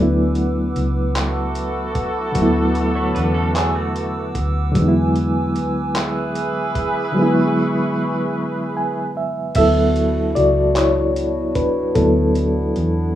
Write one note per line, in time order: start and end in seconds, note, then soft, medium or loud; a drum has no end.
0.00 0.72 D2 medium
0.00 2.31 F#3 medium
0.00 2.32 A3 medium
0.00 2.33 B3 medium
0.00 2.30 D4 medium
0.00 2.35 E4 medium
0.00 4.72 B4 medium
0.00 4.72 F#5 medium
0.00 7.11 D6 medium
0.00 9.51 E6 medium
0.35 closed hi-hat medium
0.76 2.32 C#2 loud
0.76 closed hi-hat soft
1.15 4.31 E4 medium
1.15 4.31 F#4 medium
1.15 4.31 A4 medium
1.15 clap loud
1.15 closed hi-hat medium
1.55 closed hi-hat medium
1.95 kick medium
1.95 closed hi-hat medium
2.32 3.12 D2 loud
2.32 4.70 D3 medium
2.32 4.71 F#3 medium
2.32 kick loud
2.32 closed hi-hat medium
2.37 4.72 A3 medium
2.37 4.73 B3 medium
2.42 4.75 E4 medium
2.75 closed hi-hat medium
2.95 3.15 E4 medium
2.95 3.14 C#5 medium
3.15 4.32 E2 loud
3.15 3.34 D4 medium
3.15 3.34 B4 medium
3.15 closed hi-hat soft
3.34 3.54 C#4 medium
3.34 3.54 A4 medium
3.55 3.75 B3 medium
3.55 3.74 G#4 medium
3.55 clap loud
3.55 closed hi-hat medium
3.75 4.71 A3 medium
3.75 4.71 F#4 medium
3.96 closed hi-hat medium
4.35 4.72 D2 medium
4.35 kick medium
4.35 closed hi-hat medium
4.72 7.10 D3 medium
4.72 7.11 F#3 medium
4.72 9.51 B4 medium
4.72 9.52 G#5 medium
4.72 kick loud
4.72 closed hi-hat medium
4.76 5.57 E2 loud
4.76 7.12 G#3 medium
4.76 7.13 B3 medium
4.82 4.85 D#4 medium
4.88 7.18 E4 loud
5.16 closed hi-hat medium
5.56 7.12 D2 loud
5.56 closed hi-hat soft
5.95 9.11 E4 medium
5.95 9.11 G#4 medium
5.95 9.11 B4 medium
5.95 clap loud
5.95 closed hi-hat medium
6.35 closed hi-hat medium
6.75 kick medium
6.75 closed hi-hat medium
7.12 9.50 D3 medium
7.12 9.51 F#3 medium
7.12 9.53 C#6 medium
7.17 9.52 G#3 medium
7.17 9.53 B3 medium
7.22 9.55 E4 medium
8.77 9.13 G#5 medium
9.17 9.53 E5 medium
9.55 10.32 D2 loud
9.55 11.92 F#3 medium
9.55 13.15 B3 medium
9.55 11.92 B3 medium
9.55 13.15 D4 medium
9.55 13.15 E4 medium
9.55 10.75 E4 medium
9.55 13.15 F#4 medium
9.55 10.33 A4 medium
9.55 10.32 E5 loud
9.55 kick loud
9.55 closed hi-hat medium
9.55 crash medium
9.96 closed hi-hat medium
10.35 11.92 C#2 loud
10.35 10.73 F#4 medium
10.35 10.77 D5 loud
10.35 closed hi-hat medium
10.75 11.52 E4 medium
10.75 11.58 C#5 loud
10.75 clap loud
10.75 closed hi-hat medium
11.16 closed hi-hat medium
11.55 11.93 D4 medium
11.55 11.97 B4 medium
11.55 kick medium
11.55 closed hi-hat medium
11.95 12.72 D2 loud
11.95 13.11 F#3 medium
11.95 13.12 B3 medium
11.95 12.82 D4 medium
11.95 13.12 E4 medium
11.95 12.81 A4 medium
11.95 kick loud
11.95 closed hi-hat medium
12.35 closed hi-hat medium
12.76 13.15 E2 loud
12.76 closed hi-hat soft